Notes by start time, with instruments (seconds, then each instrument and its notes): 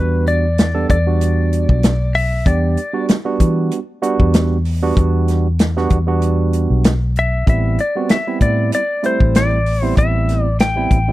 Already playing: fingered electric bass E2, tine electric piano G3 B3 D4 F#4, electric slide guitar B4
0.27 electric slide guitar D5, closed hi-hat
0.58 snare, closed hi-hat
0.74 tine electric piano G3 B3 D4 A4
0.89 fingered electric bass E2, electric slide guitar D5, kick, closed hi-hat
1.06 tine electric piano G3 B3 D4 F#4
1.21 closed hi-hat
1.53 closed hi-hat
1.69 fingered electric bass B1, kick
1.83 snare, closed hi-hat
2.14 electric slide guitar E5, open hi-hat
2.46 fingered electric bass E2, tine electric piano G3 B3 D4 G4, electric slide guitar D5, kick, closed hi-hat
2.77 closed hi-hat
2.93 tine electric piano G3 B3 D4 F#4
3.09 snare, closed hi-hat
3.25 tine electric piano G3 B3 D4 F#4
3.40 fingered electric bass E3, kick, closed hi-hat
3.71 closed hi-hat
4.02 tine electric piano G3 B3 D4 F#4, closed hi-hat
4.20 fingered electric bass E2, kick
4.34 snare, closed hi-hat
4.65 open hi-hat
4.82 tine electric piano G3 B3 D4 F#4
4.97 fingered electric bass E2, kick, closed hi-hat
5.28 snare, closed hi-hat
5.59 snare, closed hi-hat
5.77 tine electric piano G3 B3 D4 F#4, snare
5.90 fingered electric bass E2, kick, closed hi-hat
6.07 tine electric piano G3 B3 D4 F#4
6.22 closed hi-hat
6.53 closed hi-hat
6.70 fingered electric bass B1
6.84 snare, closed hi-hat
7.16 electric slide guitar E5, closed hi-hat
7.47 fingered electric bass A1, tine electric piano G3 B3 C4 E4, electric slide guitar E5, kick, closed hi-hat
7.79 electric slide guitar D5, closed hi-hat
7.96 tine electric piano G3 B3 C4 F#4
8.09 electric slide guitar E5, snare, closed hi-hat
8.27 tine electric piano G3 B3 C4 E4
8.41 fingered electric bass A2, electric slide guitar D5, kick, closed hi-hat
8.72 electric slide guitar D5, closed hi-hat
9.03 tine electric piano G3 A3 C4 E4, electric slide guitar C5, closed hi-hat
9.20 fingered electric bass A1, kick
9.35 electric slide guitar D5, snare, closed hi-hat
9.66 open hi-hat
9.82 tine electric piano G3 B3 C4 E4, electric slide guitar C5
9.97 fingered electric bass A1, electric slide guitar E5, kick, closed hi-hat
10.29 snare, closed hi-hat
10.42 electric slide guitar D5
10.59 electric slide guitar G5, snare, closed hi-hat
10.76 tine electric piano G3 B3 C4 E4
10.91 fingered electric bass A1, kick, closed hi-hat
11.08 tine electric piano G3 B3 C4 E4